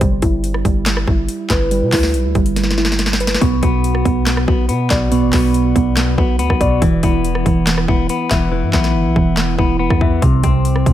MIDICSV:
0, 0, Header, 1, 5, 480
1, 0, Start_track
1, 0, Key_signature, 1, "minor"
1, 0, Tempo, 425532
1, 12, Time_signature, 4, 2, 24, 8
1, 12330, End_track
2, 0, Start_track
2, 0, Title_t, "Clean electric guitar"
2, 0, Program_c, 0, 27
2, 3851, Note_on_c, 0, 47, 90
2, 4089, Note_on_c, 0, 59, 89
2, 5035, Note_off_c, 0, 59, 0
2, 5049, Note_on_c, 0, 59, 83
2, 5051, Note_off_c, 0, 47, 0
2, 5273, Note_off_c, 0, 59, 0
2, 5286, Note_on_c, 0, 59, 81
2, 5529, Note_on_c, 0, 47, 82
2, 5757, Note_off_c, 0, 47, 0
2, 5770, Note_on_c, 0, 47, 99
2, 5999, Note_off_c, 0, 59, 0
2, 6012, Note_on_c, 0, 59, 81
2, 6954, Note_off_c, 0, 59, 0
2, 6968, Note_on_c, 0, 59, 85
2, 6971, Note_off_c, 0, 47, 0
2, 7196, Note_off_c, 0, 59, 0
2, 7210, Note_on_c, 0, 59, 94
2, 7453, Note_on_c, 0, 47, 80
2, 7689, Note_on_c, 0, 52, 94
2, 7691, Note_off_c, 0, 59, 0
2, 7693, Note_off_c, 0, 47, 0
2, 7932, Note_on_c, 0, 59, 83
2, 8880, Note_off_c, 0, 59, 0
2, 8890, Note_off_c, 0, 52, 0
2, 8894, Note_on_c, 0, 59, 87
2, 9121, Note_off_c, 0, 59, 0
2, 9134, Note_on_c, 0, 59, 87
2, 9380, Note_on_c, 0, 52, 79
2, 9593, Note_off_c, 0, 52, 0
2, 9607, Note_on_c, 0, 52, 89
2, 9834, Note_off_c, 0, 59, 0
2, 9848, Note_on_c, 0, 59, 89
2, 10799, Note_off_c, 0, 59, 0
2, 10810, Note_off_c, 0, 52, 0
2, 10813, Note_on_c, 0, 59, 86
2, 11034, Note_off_c, 0, 59, 0
2, 11048, Note_on_c, 0, 59, 84
2, 11291, Note_on_c, 0, 52, 82
2, 11527, Note_on_c, 0, 48, 103
2, 11530, Note_off_c, 0, 59, 0
2, 11532, Note_off_c, 0, 52, 0
2, 11770, Note_on_c, 0, 60, 85
2, 12330, Note_off_c, 0, 48, 0
2, 12330, Note_off_c, 0, 60, 0
2, 12330, End_track
3, 0, Start_track
3, 0, Title_t, "Synth keys"
3, 0, Program_c, 1, 88
3, 10, Note_on_c, 1, 55, 95
3, 252, Note_on_c, 1, 64, 77
3, 715, Note_off_c, 1, 55, 0
3, 729, Note_on_c, 1, 55, 90
3, 957, Note_off_c, 1, 55, 0
3, 970, Note_on_c, 1, 55, 80
3, 1196, Note_off_c, 1, 64, 0
3, 1209, Note_on_c, 1, 64, 76
3, 1694, Note_on_c, 1, 71, 84
3, 1920, Note_off_c, 1, 55, 0
3, 1934, Note_on_c, 1, 55, 91
3, 2163, Note_off_c, 1, 64, 0
3, 2176, Note_on_c, 1, 64, 86
3, 2639, Note_off_c, 1, 55, 0
3, 2653, Note_on_c, 1, 55, 85
3, 2878, Note_off_c, 1, 55, 0
3, 2891, Note_on_c, 1, 55, 74
3, 3117, Note_off_c, 1, 64, 0
3, 3130, Note_on_c, 1, 64, 75
3, 3133, Note_off_c, 1, 71, 0
3, 3614, Note_on_c, 1, 71, 87
3, 3851, Note_off_c, 1, 64, 0
3, 3851, Note_on_c, 1, 59, 92
3, 3852, Note_off_c, 1, 55, 0
3, 3853, Note_off_c, 1, 71, 0
3, 4091, Note_on_c, 1, 66, 78
3, 4557, Note_off_c, 1, 59, 0
3, 4571, Note_on_c, 1, 59, 88
3, 4797, Note_off_c, 1, 59, 0
3, 4811, Note_on_c, 1, 59, 68
3, 5037, Note_off_c, 1, 66, 0
3, 5051, Note_on_c, 1, 66, 81
3, 5532, Note_on_c, 1, 74, 86
3, 5759, Note_off_c, 1, 59, 0
3, 5773, Note_on_c, 1, 59, 91
3, 5999, Note_off_c, 1, 66, 0
3, 6012, Note_on_c, 1, 66, 80
3, 6479, Note_off_c, 1, 59, 0
3, 6492, Note_on_c, 1, 59, 85
3, 6714, Note_off_c, 1, 59, 0
3, 6727, Note_on_c, 1, 59, 74
3, 6962, Note_off_c, 1, 66, 0
3, 6972, Note_off_c, 1, 74, 0
3, 6976, Note_on_c, 1, 66, 77
3, 7454, Note_on_c, 1, 74, 87
3, 7690, Note_off_c, 1, 59, 0
3, 7691, Note_on_c, 1, 52, 92
3, 7693, Note_off_c, 1, 74, 0
3, 7694, Note_off_c, 1, 66, 0
3, 7930, Note_on_c, 1, 64, 78
3, 8400, Note_off_c, 1, 52, 0
3, 8414, Note_on_c, 1, 52, 92
3, 8636, Note_off_c, 1, 52, 0
3, 8649, Note_on_c, 1, 52, 72
3, 8878, Note_off_c, 1, 64, 0
3, 8892, Note_on_c, 1, 64, 82
3, 9370, Note_on_c, 1, 76, 85
3, 9600, Note_off_c, 1, 52, 0
3, 9614, Note_on_c, 1, 52, 91
3, 9839, Note_off_c, 1, 64, 0
3, 9853, Note_on_c, 1, 64, 80
3, 10321, Note_off_c, 1, 52, 0
3, 10334, Note_on_c, 1, 52, 92
3, 10555, Note_off_c, 1, 52, 0
3, 10569, Note_on_c, 1, 52, 68
3, 10797, Note_off_c, 1, 64, 0
3, 10811, Note_off_c, 1, 76, 0
3, 10811, Note_on_c, 1, 64, 77
3, 11292, Note_on_c, 1, 76, 83
3, 11530, Note_off_c, 1, 52, 0
3, 11530, Note_on_c, 1, 48, 94
3, 11532, Note_off_c, 1, 64, 0
3, 11532, Note_off_c, 1, 76, 0
3, 11772, Note_on_c, 1, 60, 75
3, 12236, Note_off_c, 1, 48, 0
3, 12250, Note_on_c, 1, 48, 91
3, 12330, Note_off_c, 1, 48, 0
3, 12330, Note_off_c, 1, 60, 0
3, 12330, End_track
4, 0, Start_track
4, 0, Title_t, "808-style bass"
4, 0, Program_c, 2, 38
4, 12, Note_on_c, 2, 31, 116
4, 243, Note_off_c, 2, 31, 0
4, 253, Note_on_c, 2, 31, 102
4, 714, Note_off_c, 2, 31, 0
4, 733, Note_on_c, 2, 31, 111
4, 1194, Note_off_c, 2, 31, 0
4, 1213, Note_on_c, 2, 31, 104
4, 1443, Note_off_c, 2, 31, 0
4, 1692, Note_on_c, 2, 31, 110
4, 2052, Note_on_c, 2, 47, 100
4, 2069, Note_off_c, 2, 31, 0
4, 2166, Note_off_c, 2, 47, 0
4, 2173, Note_on_c, 2, 38, 106
4, 2412, Note_on_c, 2, 35, 103
4, 2429, Note_off_c, 2, 38, 0
4, 2533, Note_on_c, 2, 38, 101
4, 2550, Note_off_c, 2, 35, 0
4, 2647, Note_off_c, 2, 38, 0
4, 2653, Note_on_c, 2, 31, 104
4, 3808, Note_off_c, 2, 31, 0
4, 3852, Note_on_c, 2, 35, 111
4, 4083, Note_off_c, 2, 35, 0
4, 4093, Note_on_c, 2, 35, 103
4, 4554, Note_off_c, 2, 35, 0
4, 4573, Note_on_c, 2, 35, 106
4, 5033, Note_off_c, 2, 35, 0
4, 5053, Note_on_c, 2, 35, 106
4, 5292, Note_on_c, 2, 47, 99
4, 5309, Note_off_c, 2, 35, 0
4, 5520, Note_off_c, 2, 47, 0
4, 5532, Note_on_c, 2, 35, 108
4, 5892, Note_on_c, 2, 33, 104
4, 5909, Note_off_c, 2, 35, 0
4, 6006, Note_off_c, 2, 33, 0
4, 6013, Note_on_c, 2, 35, 105
4, 6473, Note_off_c, 2, 35, 0
4, 6493, Note_on_c, 2, 35, 108
4, 6954, Note_off_c, 2, 35, 0
4, 6973, Note_on_c, 2, 35, 107
4, 7212, Note_on_c, 2, 38, 102
4, 7229, Note_off_c, 2, 35, 0
4, 7326, Note_off_c, 2, 38, 0
4, 7331, Note_on_c, 2, 35, 96
4, 7677, Note_off_c, 2, 35, 0
4, 7692, Note_on_c, 2, 28, 111
4, 7923, Note_off_c, 2, 28, 0
4, 7933, Note_on_c, 2, 28, 104
4, 8393, Note_off_c, 2, 28, 0
4, 8413, Note_on_c, 2, 28, 107
4, 8873, Note_off_c, 2, 28, 0
4, 8892, Note_on_c, 2, 28, 102
4, 9123, Note_off_c, 2, 28, 0
4, 9372, Note_on_c, 2, 28, 105
4, 9732, Note_on_c, 2, 43, 100
4, 9749, Note_off_c, 2, 28, 0
4, 9846, Note_off_c, 2, 43, 0
4, 9853, Note_on_c, 2, 35, 109
4, 10092, Note_on_c, 2, 31, 100
4, 10109, Note_off_c, 2, 35, 0
4, 10212, Note_on_c, 2, 35, 98
4, 10229, Note_off_c, 2, 31, 0
4, 10326, Note_off_c, 2, 35, 0
4, 10333, Note_on_c, 2, 28, 106
4, 10793, Note_off_c, 2, 28, 0
4, 10812, Note_on_c, 2, 28, 101
4, 11158, Note_off_c, 2, 28, 0
4, 11171, Note_on_c, 2, 40, 94
4, 11517, Note_off_c, 2, 40, 0
4, 11532, Note_on_c, 2, 36, 114
4, 11763, Note_off_c, 2, 36, 0
4, 11773, Note_on_c, 2, 36, 103
4, 12233, Note_off_c, 2, 36, 0
4, 12253, Note_on_c, 2, 36, 107
4, 12330, Note_off_c, 2, 36, 0
4, 12330, End_track
5, 0, Start_track
5, 0, Title_t, "Drums"
5, 12, Note_on_c, 9, 36, 120
5, 12, Note_on_c, 9, 42, 73
5, 125, Note_off_c, 9, 36, 0
5, 125, Note_off_c, 9, 42, 0
5, 251, Note_on_c, 9, 42, 77
5, 253, Note_on_c, 9, 36, 96
5, 364, Note_off_c, 9, 42, 0
5, 366, Note_off_c, 9, 36, 0
5, 494, Note_on_c, 9, 42, 73
5, 607, Note_off_c, 9, 42, 0
5, 613, Note_on_c, 9, 37, 71
5, 726, Note_off_c, 9, 37, 0
5, 733, Note_on_c, 9, 36, 96
5, 736, Note_on_c, 9, 42, 61
5, 846, Note_off_c, 9, 36, 0
5, 849, Note_off_c, 9, 42, 0
5, 972, Note_on_c, 9, 38, 121
5, 973, Note_on_c, 9, 42, 91
5, 977, Note_on_c, 9, 39, 98
5, 1085, Note_off_c, 9, 38, 0
5, 1086, Note_off_c, 9, 42, 0
5, 1090, Note_off_c, 9, 39, 0
5, 1092, Note_on_c, 9, 37, 103
5, 1205, Note_off_c, 9, 37, 0
5, 1213, Note_on_c, 9, 36, 101
5, 1326, Note_off_c, 9, 36, 0
5, 1450, Note_on_c, 9, 42, 86
5, 1563, Note_off_c, 9, 42, 0
5, 1691, Note_on_c, 9, 38, 99
5, 1692, Note_on_c, 9, 36, 88
5, 1694, Note_on_c, 9, 42, 73
5, 1695, Note_on_c, 9, 39, 76
5, 1804, Note_off_c, 9, 38, 0
5, 1805, Note_off_c, 9, 36, 0
5, 1806, Note_off_c, 9, 42, 0
5, 1808, Note_off_c, 9, 39, 0
5, 1932, Note_on_c, 9, 42, 74
5, 2044, Note_off_c, 9, 42, 0
5, 2171, Note_on_c, 9, 46, 79
5, 2172, Note_on_c, 9, 38, 90
5, 2173, Note_on_c, 9, 36, 90
5, 2176, Note_on_c, 9, 39, 75
5, 2283, Note_off_c, 9, 46, 0
5, 2285, Note_off_c, 9, 38, 0
5, 2286, Note_off_c, 9, 36, 0
5, 2289, Note_off_c, 9, 39, 0
5, 2292, Note_on_c, 9, 38, 70
5, 2405, Note_off_c, 9, 38, 0
5, 2413, Note_on_c, 9, 42, 74
5, 2526, Note_off_c, 9, 42, 0
5, 2652, Note_on_c, 9, 42, 38
5, 2653, Note_on_c, 9, 36, 96
5, 2765, Note_off_c, 9, 42, 0
5, 2766, Note_off_c, 9, 36, 0
5, 2772, Note_on_c, 9, 42, 65
5, 2885, Note_off_c, 9, 42, 0
5, 2892, Note_on_c, 9, 38, 58
5, 2893, Note_on_c, 9, 42, 93
5, 2973, Note_off_c, 9, 38, 0
5, 2973, Note_on_c, 9, 38, 55
5, 3006, Note_off_c, 9, 42, 0
5, 3052, Note_off_c, 9, 38, 0
5, 3052, Note_on_c, 9, 38, 68
5, 3133, Note_off_c, 9, 38, 0
5, 3133, Note_on_c, 9, 38, 61
5, 3213, Note_off_c, 9, 38, 0
5, 3213, Note_on_c, 9, 38, 76
5, 3293, Note_off_c, 9, 38, 0
5, 3293, Note_on_c, 9, 38, 69
5, 3370, Note_on_c, 9, 42, 87
5, 3372, Note_off_c, 9, 38, 0
5, 3372, Note_on_c, 9, 38, 85
5, 3453, Note_off_c, 9, 38, 0
5, 3453, Note_on_c, 9, 38, 77
5, 3483, Note_off_c, 9, 42, 0
5, 3533, Note_off_c, 9, 38, 0
5, 3533, Note_on_c, 9, 38, 98
5, 3613, Note_on_c, 9, 42, 74
5, 3646, Note_off_c, 9, 38, 0
5, 3693, Note_off_c, 9, 42, 0
5, 3693, Note_on_c, 9, 38, 107
5, 3693, Note_on_c, 9, 42, 59
5, 3773, Note_off_c, 9, 38, 0
5, 3773, Note_off_c, 9, 42, 0
5, 3773, Note_on_c, 9, 38, 93
5, 3773, Note_on_c, 9, 42, 42
5, 3852, Note_off_c, 9, 42, 0
5, 3852, Note_on_c, 9, 36, 114
5, 3852, Note_on_c, 9, 42, 73
5, 3886, Note_off_c, 9, 38, 0
5, 3965, Note_off_c, 9, 36, 0
5, 3965, Note_off_c, 9, 42, 0
5, 4091, Note_on_c, 9, 42, 76
5, 4093, Note_on_c, 9, 36, 97
5, 4203, Note_off_c, 9, 42, 0
5, 4206, Note_off_c, 9, 36, 0
5, 4333, Note_on_c, 9, 42, 73
5, 4446, Note_off_c, 9, 42, 0
5, 4452, Note_on_c, 9, 37, 72
5, 4565, Note_off_c, 9, 37, 0
5, 4573, Note_on_c, 9, 36, 93
5, 4575, Note_on_c, 9, 42, 60
5, 4686, Note_off_c, 9, 36, 0
5, 4688, Note_off_c, 9, 42, 0
5, 4812, Note_on_c, 9, 38, 125
5, 4813, Note_on_c, 9, 42, 92
5, 4816, Note_on_c, 9, 39, 97
5, 4925, Note_off_c, 9, 38, 0
5, 4926, Note_off_c, 9, 42, 0
5, 4929, Note_off_c, 9, 39, 0
5, 4932, Note_on_c, 9, 37, 105
5, 5045, Note_off_c, 9, 37, 0
5, 5053, Note_on_c, 9, 36, 108
5, 5165, Note_off_c, 9, 36, 0
5, 5290, Note_on_c, 9, 42, 85
5, 5403, Note_off_c, 9, 42, 0
5, 5531, Note_on_c, 9, 38, 99
5, 5532, Note_on_c, 9, 36, 90
5, 5534, Note_on_c, 9, 42, 72
5, 5535, Note_on_c, 9, 39, 78
5, 5644, Note_off_c, 9, 38, 0
5, 5645, Note_off_c, 9, 36, 0
5, 5647, Note_off_c, 9, 42, 0
5, 5648, Note_off_c, 9, 39, 0
5, 5772, Note_on_c, 9, 42, 74
5, 5884, Note_off_c, 9, 42, 0
5, 6010, Note_on_c, 9, 46, 77
5, 6012, Note_on_c, 9, 38, 94
5, 6013, Note_on_c, 9, 36, 98
5, 6016, Note_on_c, 9, 39, 75
5, 6123, Note_off_c, 9, 46, 0
5, 6125, Note_off_c, 9, 38, 0
5, 6126, Note_off_c, 9, 36, 0
5, 6129, Note_off_c, 9, 39, 0
5, 6253, Note_on_c, 9, 42, 72
5, 6366, Note_off_c, 9, 42, 0
5, 6493, Note_on_c, 9, 36, 94
5, 6495, Note_on_c, 9, 42, 60
5, 6606, Note_off_c, 9, 36, 0
5, 6608, Note_off_c, 9, 42, 0
5, 6732, Note_on_c, 9, 38, 118
5, 6733, Note_on_c, 9, 42, 91
5, 6737, Note_on_c, 9, 39, 100
5, 6845, Note_off_c, 9, 38, 0
5, 6846, Note_off_c, 9, 42, 0
5, 6849, Note_off_c, 9, 39, 0
5, 6973, Note_on_c, 9, 36, 103
5, 7085, Note_off_c, 9, 36, 0
5, 7209, Note_on_c, 9, 42, 88
5, 7322, Note_off_c, 9, 42, 0
5, 7332, Note_on_c, 9, 36, 85
5, 7332, Note_on_c, 9, 37, 98
5, 7444, Note_off_c, 9, 36, 0
5, 7445, Note_off_c, 9, 37, 0
5, 7452, Note_on_c, 9, 36, 90
5, 7453, Note_on_c, 9, 42, 70
5, 7564, Note_off_c, 9, 36, 0
5, 7566, Note_off_c, 9, 42, 0
5, 7691, Note_on_c, 9, 42, 77
5, 7692, Note_on_c, 9, 36, 115
5, 7804, Note_off_c, 9, 42, 0
5, 7805, Note_off_c, 9, 36, 0
5, 7930, Note_on_c, 9, 42, 76
5, 7933, Note_on_c, 9, 36, 97
5, 8043, Note_off_c, 9, 42, 0
5, 8046, Note_off_c, 9, 36, 0
5, 8173, Note_on_c, 9, 42, 76
5, 8285, Note_off_c, 9, 42, 0
5, 8292, Note_on_c, 9, 37, 72
5, 8405, Note_off_c, 9, 37, 0
5, 8413, Note_on_c, 9, 36, 94
5, 8415, Note_on_c, 9, 42, 61
5, 8526, Note_off_c, 9, 36, 0
5, 8528, Note_off_c, 9, 42, 0
5, 8652, Note_on_c, 9, 38, 122
5, 8653, Note_on_c, 9, 42, 92
5, 8656, Note_on_c, 9, 39, 95
5, 8765, Note_off_c, 9, 38, 0
5, 8765, Note_off_c, 9, 42, 0
5, 8769, Note_off_c, 9, 39, 0
5, 8772, Note_on_c, 9, 37, 102
5, 8884, Note_off_c, 9, 37, 0
5, 8892, Note_on_c, 9, 36, 108
5, 9005, Note_off_c, 9, 36, 0
5, 9129, Note_on_c, 9, 42, 89
5, 9242, Note_off_c, 9, 42, 0
5, 9371, Note_on_c, 9, 38, 101
5, 9372, Note_on_c, 9, 36, 93
5, 9374, Note_on_c, 9, 42, 73
5, 9375, Note_on_c, 9, 39, 81
5, 9484, Note_off_c, 9, 38, 0
5, 9485, Note_off_c, 9, 36, 0
5, 9487, Note_off_c, 9, 42, 0
5, 9488, Note_off_c, 9, 39, 0
5, 9852, Note_on_c, 9, 38, 93
5, 9853, Note_on_c, 9, 36, 96
5, 9856, Note_on_c, 9, 39, 71
5, 9964, Note_off_c, 9, 38, 0
5, 9966, Note_off_c, 9, 36, 0
5, 9969, Note_off_c, 9, 39, 0
5, 9972, Note_on_c, 9, 38, 66
5, 10085, Note_off_c, 9, 38, 0
5, 10333, Note_on_c, 9, 36, 96
5, 10446, Note_off_c, 9, 36, 0
5, 10572, Note_on_c, 9, 38, 116
5, 10576, Note_on_c, 9, 39, 95
5, 10685, Note_off_c, 9, 38, 0
5, 10689, Note_off_c, 9, 39, 0
5, 10812, Note_on_c, 9, 36, 101
5, 10925, Note_off_c, 9, 36, 0
5, 11172, Note_on_c, 9, 36, 83
5, 11172, Note_on_c, 9, 37, 98
5, 11284, Note_off_c, 9, 36, 0
5, 11285, Note_off_c, 9, 37, 0
5, 11292, Note_on_c, 9, 36, 91
5, 11405, Note_off_c, 9, 36, 0
5, 11532, Note_on_c, 9, 36, 117
5, 11532, Note_on_c, 9, 42, 75
5, 11644, Note_off_c, 9, 42, 0
5, 11645, Note_off_c, 9, 36, 0
5, 11771, Note_on_c, 9, 42, 79
5, 11773, Note_on_c, 9, 36, 91
5, 11883, Note_off_c, 9, 42, 0
5, 11886, Note_off_c, 9, 36, 0
5, 12013, Note_on_c, 9, 42, 71
5, 12126, Note_off_c, 9, 42, 0
5, 12133, Note_on_c, 9, 37, 69
5, 12246, Note_off_c, 9, 37, 0
5, 12253, Note_on_c, 9, 36, 96
5, 12256, Note_on_c, 9, 42, 61
5, 12330, Note_off_c, 9, 36, 0
5, 12330, Note_off_c, 9, 42, 0
5, 12330, End_track
0, 0, End_of_file